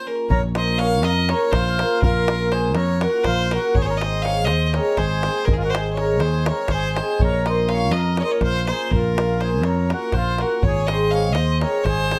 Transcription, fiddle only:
0.07 0.29 A#4 medium
0.29 0.41 C#5 medium
0.56 0.80 D#5 medium
0.78 1.06 F5 loud
1.04 1.31 D#5 loud
1.30 1.53 C#5 medium
1.51 2.02 C5 loud
2.02 2.53 A#4 loud
2.52 2.75 C5 medium
2.76 3.02 C#5 medium
3.01 3.25 A#4 medium
3.24 3.54 C5 loud
3.52 3.76 A#4 medium
3.75 3.83 C#5 medium
3.82 3.88 C5 medium
3.87 3.99 C#5 loud
3.98 4.24 D#5 medium
4.22 4.46 F5 loud
4.45 4.66 D#5 medium
4.66 4.74 D#5 medium
4.73 4.99 C#5 loud
4.97 5.47 C5 loud
5.45 5.54 A#4 medium
5.53 5.60 G#4 medium
5.59 5.72 A#4 loud
5.70 5.92 C5 medium
5.93 6.21 C#5 medium
6.20 6.47 C5 medium
6.46 6.72 C#5 medium
6.71 6.94 C5 loud
6.95 7.23 C5 medium
7.22 7.48 C#5 loud
7.47 7.70 D#5 medium
7.68 7.93 F5 loud
7.92 8.18 D#5 medium
8.20 8.25 C#5 medium
8.24 8.33 D#5 medium
8.31 8.42 C#5 medium
8.43 8.66 C5 loud
8.67 8.92 C5 medium
8.91 9.42 A#4 medium
9.41 9.66 C5 medium
9.64 9.92 C#5 medium
9.91 10.15 A#4 medium
10.13 10.43 C5 medium
10.41 10.64 A#4 medium
10.63 10.88 C#5 loud
10.87 11.12 D#5 medium
11.11 11.34 F5 medium
11.33 11.60 D#5 medium
11.61 11.86 C#5 medium
11.84 12.19 C5 loud

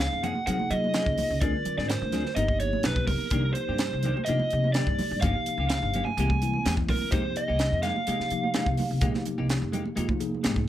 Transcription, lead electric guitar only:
0.00 0.24 F5 medium
0.24 0.46 F#5 medium
0.47 0.71 F#5 medium
0.71 1.41 D#5 medium
1.41 1.75 D5 medium
1.78 1.89 D5 medium
1.89 2.34 C5 medium
2.36 2.58 D#5 medium
2.60 2.85 C#5 medium
2.84 3.07 B4 medium
3.07 3.53 A#4 medium
3.53 4.28 C5 medium
4.25 4.73 D#5 medium
4.73 5.21 D5 medium
5.21 5.68 F5 medium
5.69 6.07 F5 medium
6.05 6.72 G#5 loud
6.90 7.11 A#4 medium
7.12 7.34 C5 medium
7.37 7.81 D#5 medium
7.83 10.41 F5 medium

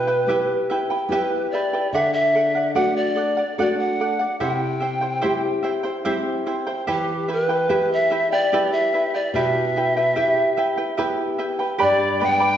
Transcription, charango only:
0.07 0.28 E4 soft
0.07 0.28 B4 soft
0.07 0.28 G5 soft
0.28 0.70 E4 medium
0.28 0.70 G4 medium
0.28 0.70 B4 medium
0.28 0.68 E5 medium
0.28 0.70 G5 medium
0.70 0.91 E4 medium
0.70 0.90 B4 medium
0.70 0.90 E5 medium
0.70 0.89 G5 medium
0.90 1.11 E4 soft
0.90 1.11 B4 soft
0.90 1.11 G5 medium
1.12 1.53 E4 medium
1.12 1.53 G4 medium
1.12 1.53 B4 medium
1.12 1.52 E5 medium
1.12 1.53 G5 medium
1.53 1.73 E4 soft
1.53 1.73 B4 medium
1.53 1.73 E5 soft
1.53 1.72 G5 medium
1.73 1.94 E4 soft
1.73 1.94 B4 soft
1.73 1.94 G5 soft
1.94 2.34 A4 medium
1.94 2.35 D5 medium
1.94 2.36 F#5 medium
2.35 2.55 A4 medium
2.35 2.56 D5 medium
2.35 2.54 F#5 medium
2.55 2.74 D5 soft
2.55 2.75 F#5 soft
2.75 3.14 A4 medium
2.75 3.16 D5 medium
2.75 3.16 F#5 medium
3.16 3.37 A4 medium
3.16 3.37 D5 medium
3.16 3.36 F#5 medium
3.37 3.58 D5 soft
3.37 3.58 F#5 medium
3.58 3.99 A4 medium
3.58 4.00 D5 medium
3.58 4.00 F#5 medium
4.00 4.21 A4 soft
4.00 4.20 D5 soft
4.00 4.18 F#5 medium
4.19 4.40 D5 soft
4.19 4.40 F#5 soft
4.40 4.80 E4 medium
4.40 4.82 G4 medium
4.40 4.81 C5 medium
4.40 4.79 E5 medium
4.40 4.81 G5 medium
4.80 5.02 E4 medium
4.80 5.01 C5 medium
4.80 5.02 E5 medium
4.80 5.00 G5 medium
5.01 5.21 E4 soft
5.01 5.21 C5 soft
5.01 5.21 G5 medium
5.21 5.62 E4 medium
5.21 5.64 G4 medium
5.21 5.62 C5 medium
5.21 5.61 E5 medium
5.21 5.63 G5 medium
5.63 5.83 E4 medium
5.63 5.84 C5 medium
5.63 5.84 E5 medium
5.63 5.82 G5 medium
5.83 6.04 E4 soft
5.83 6.05 C5 medium
5.83 6.05 G5 medium
6.05 6.45 E4 medium
6.05 6.47 G4 medium
6.05 6.46 C5 loud
6.05 6.45 E5 medium
6.05 6.46 G5 medium
6.46 6.67 E4 medium
6.46 6.66 C5 medium
6.46 6.67 E5 medium
6.46 6.65 G5 medium
6.67 6.86 E4 soft
6.67 6.88 C5 soft
6.67 6.87 G5 medium
6.87 7.27 E4 medium
6.87 7.29 G4 medium
6.87 7.28 B4 medium
6.87 7.27 E5 medium
6.87 7.29 G5 medium
7.28 7.49 E4 medium
7.28 7.49 B4 medium
7.28 7.49 E5 medium
7.28 7.48 G5 medium
7.49 7.68 E4 soft
7.49 7.69 B4 soft
7.49 7.69 G5 soft
7.69 8.10 E4 medium
7.69 8.11 G4 medium
7.69 8.10 B4 medium
7.69 8.09 E5 medium
7.69 8.10 G5 medium
8.10 8.32 E4 medium
8.10 8.32 B4 medium
8.10 8.32 E5 medium
8.10 8.31 G5 medium
8.33 8.52 E4 soft
8.33 8.53 B4 soft
8.33 8.53 G5 medium
8.53 8.93 E4 medium
8.53 8.94 G4 medium
8.53 8.93 B4 medium
8.53 8.92 E5 medium
8.53 8.94 G5 medium
8.94 9.14 E4 medium
8.94 9.14 B4 medium
8.94 9.14 E5 soft
8.94 9.13 G5 medium
9.14 9.35 E4 soft
9.14 9.34 B4 soft
9.14 9.35 G5 soft
9.35 9.76 E4 medium
9.35 9.76 G4 medium
9.35 9.76 B4 medium
9.35 9.75 E5 medium
9.35 9.76 G5 medium
9.76 9.97 E4 medium
9.76 9.96 B4 medium
9.76 9.96 E5 medium
9.76 9.95 G5 medium
9.97 10.15 E4 soft
9.97 10.16 B4 soft
9.97 10.16 G5 medium
10.16 10.56 E4 medium
10.16 10.57 G4 medium
10.16 10.56 B4 medium
10.16 10.56 E5 medium
10.16 10.57 G5 medium
10.57 10.77 E4 medium
10.57 10.77 B4 medium
10.57 10.78 E5 medium
10.57 10.76 G5 medium
10.77 10.97 E4 soft
10.77 10.97 B4 soft
10.77 10.97 G5 medium
10.97 11.38 E4 medium
10.97 11.39 G4 medium
10.97 11.38 B4 medium
10.97 11.37 E5 medium
10.97 11.38 G5 medium
11.38 11.60 E4 medium
11.38 11.59 B4 medium
11.38 11.59 E5 medium
11.38 11.58 G5 medium
11.59 11.79 E4 soft
11.59 11.78 B4 soft
11.59 11.77 G5 medium
11.79 12.20 G4 medium
11.79 12.19 B4 medium
11.79 12.20 D5 medium
11.79 12.19 G5 medium
11.79 12.20 B5 medium
12.20 12.41 B4 medium
12.20 12.40 D5 medium
12.20 12.41 G5 medium
12.20 12.39 B5 medium
12.40 12.57 B4 soft
12.40 12.57 D5 soft
12.40 12.57 B5 medium

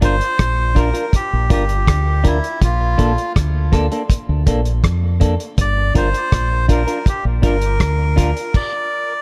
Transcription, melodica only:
0.04 0.79 C5 loud
0.78 1.15 A#4 medium
1.15 1.51 G4 medium
1.52 2.28 G4 medium
2.27 2.60 E4 medium
2.64 3.33 F4 medium
5.61 5.94 D5 loud
5.97 6.66 C5 medium
6.71 7.08 A#4 medium
7.08 7.25 G4 medium
7.46 8.17 A#4 medium
8.18 8.56 A#4 medium
8.56 9.22 D5 medium

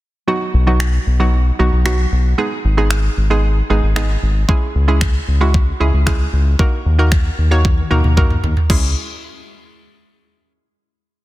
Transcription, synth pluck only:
0.28 0.53 F#3 medium
0.28 0.53 B3 medium
0.28 0.53 D#4 medium
0.28 0.53 F#4 medium
0.67 1.01 F#3 medium
0.67 1.01 B3 medium
0.67 1.01 D#4 medium
0.67 1.01 F#4 medium
1.20 1.45 F#3 medium
1.20 1.45 B3 medium
1.20 1.45 D#4 medium
1.20 1.45 F#4 medium
1.59 1.76 F#3 medium
1.59 1.76 B3 medium
1.59 1.76 D#4 medium
1.59 1.76 F#4 medium
1.85 2.19 F#3 medium
1.85 2.19 B3 medium
1.85 2.19 D#4 medium
1.85 2.19 F#4 loud
2.38 2.63 G#3 medium
2.38 2.63 B3 medium
2.38 2.63 D#4 medium
2.38 2.64 G#4 medium
2.77 3.11 G#3 medium
2.77 3.11 B3 medium
2.77 3.11 D#4 medium
2.77 3.11 G#4 medium
3.30 3.55 G#3 medium
3.30 3.56 B3 medium
3.30 3.56 D#4 medium
3.30 3.56 G#4 medium
3.70 3.87 G#3 medium
3.70 3.87 B3 medium
3.70 3.87 D#4 medium
3.70 3.87 G#4 medium
3.96 4.30 G#3 medium
3.96 4.30 B3 medium
3.96 4.30 D#4 medium
3.96 4.30 G#4 medium
4.49 4.74 G#3 medium
4.49 4.74 C#4 medium
4.49 4.74 E4 medium
4.49 4.74 G#4 medium
4.88 5.22 G#3 medium
4.88 5.22 C#4 medium
4.88 5.22 E4 medium
4.88 5.22 G#4 medium
5.41 5.66 G#3 medium
5.41 5.66 C#4 medium
5.41 5.66 E4 medium
5.41 5.66 F#4 medium
5.80 5.97 G#3 medium
5.80 5.97 C#4 medium
5.80 5.97 E4 medium
5.80 5.97 G#4 medium
6.06 6.40 G#3 medium
6.06 6.40 C#4 medium
6.06 6.40 E4 medium
6.06 6.40 G#4 loud
6.59 6.84 A#3 medium
6.59 6.84 D#4 medium
6.59 6.85 F#4 medium
6.59 6.85 A#4 medium
6.99 7.32 A#3 medium
6.99 7.32 D#4 medium
6.99 7.32 F#4 medium
6.99 7.33 A#4 medium
7.51 7.76 A#3 medium
7.51 7.76 D#4 medium
7.51 7.77 F#4 medium
7.51 7.77 C#5 loud
7.91 8.07 A#3 medium
7.91 8.08 D#4 medium
7.91 8.08 F#4 medium
7.91 8.08 A#4 medium
8.17 8.51 A#3 medium
8.17 8.51 D#4 medium
8.17 8.51 F#4 medium
8.17 8.51 A#4 medium
8.70 8.94 G#3 medium
8.70 8.94 C#4 medium
8.70 8.94 E4 medium
8.70 8.94 G#4 medium

